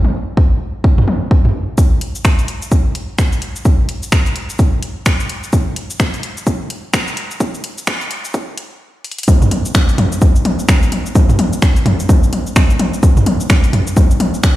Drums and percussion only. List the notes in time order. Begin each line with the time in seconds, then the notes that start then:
0.04 high tom
0.37 kick
0.84 kick
0.98 mid tom
1.08 high tom
1.31 kick
1.45 mid tom
1.78 kick, cabasa
2.01 closed hi-hat
2.15 cabasa
2.25 finger snap, kick, cabasa
2.39 closed hi-hat, cabasa
2.48 closed hi-hat
2.62 cabasa
2.72 kick, cabasa
2.95 closed hi-hat
3.18 finger snap, kick, cabasa
3.32 cabasa
3.42 closed hi-hat
3.56 cabasa
3.65 kick, cabasa
3.89 closed hi-hat
4.03 cabasa
4.12 finger snap, kick, cabasa
4.26 closed hi-hat, cabasa
4.36 closed hi-hat
4.50 cabasa
4.59 kick, cabasa
4.83 closed hi-hat
5.06 finger snap, kick, cabasa
5.20 cabasa
5.29 closed hi-hat
5.43 cabasa
5.53 kick, cabasa
5.76 closed hi-hat
5.90 cabasa
6.00 finger snap, kick, cabasa
6.14 closed hi-hat, cabasa
6.23 closed hi-hat
6.37 cabasa
6.47 kick, cabasa
6.70 closed hi-hat
6.94 finger snap, kick, cabasa
7.08 cabasa
7.17 closed hi-hat
7.31 cabasa
7.40 kick, cabasa
7.54 cabasa
7.64 closed hi-hat
7.78 cabasa
7.87 finger snap, kick, cabasa
8.01 closed hi-hat, cabasa
8.11 closed hi-hat
8.25 cabasa
8.34 kick, cabasa
8.58 closed hi-hat
9.04 closed hi-hat
9.11 closed hi-hat
9.18 closed hi-hat
9.23 closed hi-hat
9.28 kick, high tom, cabasa
9.42 mid tom, cabasa
9.51 closed hi-hat, high tom
9.65 cabasa
9.75 finger snap, kick, high tom, cabasa
9.89 closed hi-hat, cabasa
9.98 closed hi-hat, mid tom, high tom
10.12 cabasa
10.22 kick, high tom, cabasa
10.36 cabasa
10.45 closed hi-hat, high tom
10.59 cabasa
10.69 finger snap, kick, high tom, cabasa
10.83 cabasa
10.92 closed hi-hat, high tom
11.06 cabasa
11.15 kick, high tom, cabasa
11.29 mid tom, cabasa
11.39 closed hi-hat, high tom
11.53 cabasa
11.62 finger snap, kick, high tom, cabasa
11.76 closed hi-hat, cabasa
11.86 closed hi-hat, mid tom, high tom
12.00 cabasa
12.09 kick, high tom, cabasa
12.23 cabasa
12.33 closed hi-hat, high tom
12.47 cabasa
12.56 finger snap, kick, high tom, cabasa
12.70 cabasa
12.79 closed hi-hat, high tom
12.93 cabasa
13.03 kick, high tom, cabasa
13.17 mid tom, cabasa
13.26 closed hi-hat, high tom
13.40 cabasa
13.50 finger snap, kick, high tom, cabasa
13.64 closed hi-hat, cabasa
13.73 closed hi-hat, mid tom, high tom
13.87 cabasa
13.97 kick, high tom, cabasa
14.11 cabasa
14.20 closed hi-hat, high tom
14.34 cabasa
14.44 finger snap, kick, high tom, cabasa